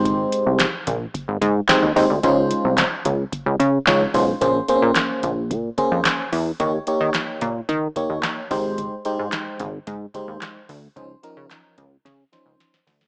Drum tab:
HH |x-x-x-x-x-x-x-o-|x-x-x-x-x-x-x-o-|x-x-x-x-x-x-x-o-|x-x-x-x-x-x-x-o-|
CP |----x-------x---|----x-------x---|----x-------x---|----x-------x---|
SD |----o-------o---|----o-------o---|----o-------o---|----o-------o---|
BD |o-----o-o-o-----|o-----o-o-o---o-|o-----o-o-o-----|o-----o-o-o---o-|

HH |x-x-x-x-x-x-x-o-|x-x-x-x-x-x-x-o-|
CP |----x-------x---|----x-----------|
SD |----o-------o---|----o---o-o-oooo|
BD |o-----o-o-o-----|o-----o-o-------|